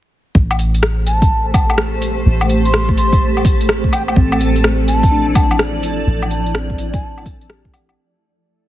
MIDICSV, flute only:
0, 0, Header, 1, 2, 480
1, 0, Start_track
1, 0, Key_signature, 0, "minor"
1, 0, Tempo, 476190
1, 356, Time_signature, 4, 2, 24, 8
1, 8752, End_track
2, 0, Start_track
2, 0, Title_t, "Flute"
2, 0, Program_c, 0, 73
2, 1077, Note_on_c, 0, 81, 90
2, 1472, Note_off_c, 0, 81, 0
2, 1553, Note_on_c, 0, 81, 90
2, 1810, Note_off_c, 0, 81, 0
2, 2672, Note_on_c, 0, 84, 86
2, 2920, Note_off_c, 0, 84, 0
2, 3000, Note_on_c, 0, 84, 91
2, 3254, Note_off_c, 0, 84, 0
2, 3961, Note_on_c, 0, 79, 89
2, 4058, Note_off_c, 0, 79, 0
2, 4117, Note_on_c, 0, 79, 72
2, 4168, Note_off_c, 0, 79, 0
2, 4914, Note_on_c, 0, 81, 93
2, 5311, Note_off_c, 0, 81, 0
2, 5395, Note_on_c, 0, 81, 89
2, 5651, Note_off_c, 0, 81, 0
2, 6356, Note_on_c, 0, 81, 88
2, 6612, Note_off_c, 0, 81, 0
2, 6993, Note_on_c, 0, 81, 92
2, 7316, Note_off_c, 0, 81, 0
2, 8752, End_track
0, 0, End_of_file